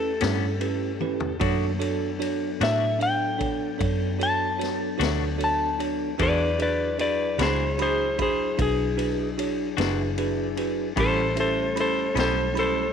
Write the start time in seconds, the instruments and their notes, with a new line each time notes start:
Already playing: fingered electric bass E2, tonewheel organ A3 C#4 G4 A4, tine electric piano C#4 E4 G4 B4, electric slide guitar A4
0.21 fingered electric bass G2, clean electric guitar A2 G3 B3 C#4, tine electric piano C#4 E4 G4 C#5, snare, ride
0.60 tine electric piano C#4 E4 G4 B4, ride
1.00 tine electric piano C#4 E4 G4 B4, high tom
1.20 floor tom
1.40 fingered electric bass F#2, clean electric guitar B2 A3 D4 F#4, tonewheel organ D#3 F#3 A#3 B3, tine electric piano D4 F#4 A4 C#5, kick, ride
1.79 tonewheel organ F#3 B3 D4 A4, tine electric piano D4 F#4 A4 C#5, ride
2.19 tine electric piano D4 F#4 A4 C#5, ride
2.60 fingered electric bass A2, clean electric guitar B2 A3 D4 F#4, tine electric piano D4 F#4 A4 C#5, electric slide guitar E5, snare, ride
2.99 tine electric piano D4 A4 C#5, electric slide guitar G5, ride
3.38 tine electric piano D4 A4 C#5, kick, ride
3.78 fingered electric bass F#2, tine electric piano D4 A4 C#5, kick, ride
4.19 tine electric piano D4 F#4 A4 C#5, ride
4.23 electric slide guitar A5
4.58 tine electric piano D4 F#4 A4 C#5, ride
4.63 snare
4.97 fingered electric bass D2, clean electric guitar B2 A3 D4 F#4, tine electric piano D4 F#4 A4 C#5, ride
5.02 snare
5.38 tine electric piano D4 F#4 A4 C#5, ride
5.44 electric slide guitar A5
5.79 tine electric piano D4 F#4 A4 C#5, ride
6.18 fingered electric bass E2, clean electric guitar E3 G#3 D4 F#4, tonewheel organ F#3 D4 E4 G#4, tine electric piano D4 F#4 G#4 B4, electric slide guitar B4, kick, ride
6.22 electric slide guitar D5
6.59 tine electric piano D4 F#4 G#4 B4, electric slide guitar B4 D5, ride
6.98 tine electric piano D4 F#4 G#4 B4, electric slide guitar B4 D5, ride
7.38 fingered electric bass C#2, clean electric guitar E3 G#3 D4 F#4, tine electric piano D4 F#4 G#4 B5, snare, ride
7.42 electric slide guitar G#4 C5
7.78 tine electric piano D4 F#4 G#4 B5, electric slide guitar G#4, ride
7.82 electric slide guitar C5
8.18 tine electric piano D4 F#4 G#4 B5, electric slide guitar G#4, kick, ride
8.22 electric slide guitar C5
8.57 fingered electric bass B1, tine electric piano D4 F#4 G#4 B4, kick, ride
8.62 electric slide guitar G#4
8.97 tine electric piano D4 F#4 G#4 B4, ride
9.38 tine electric piano D4 F#4 G#4 C#5, ride
9.77 fingered electric bass F#1, clean electric guitar E3 G#3 D4 F#4, tine electric piano D4 F#4 G#4 B4, snare, ride
10.18 tine electric piano D4 F#4 G#4 B4, ride
10.57 tine electric piano D4 F#4 G#4 B4, ride
10.96 fingered electric bass A1, clean electric guitar A2 G3 B3 C#4, tonewheel organ G3 A3 C#4 A4, tine electric piano C#4 E4 G4 B5, electric slide guitar A4, kick, ride
11.00 electric slide guitar C5
11.35 tine electric piano C#4 E4 G4 E5, ride
11.40 electric slide guitar A4 C5
11.75 tine electric piano C#4 E4 G4 B5, ride
11.80 electric slide guitar A4 C5
12.14 fingered electric bass B1, clean electric guitar A2 G3 B3 C#4, tine electric piano C#4 E4 G4 B5, ride
12.19 electric slide guitar A4 C5, snare
12.54 tine electric piano C#4 E4 G4 B5, ride
12.59 electric slide guitar A4 C5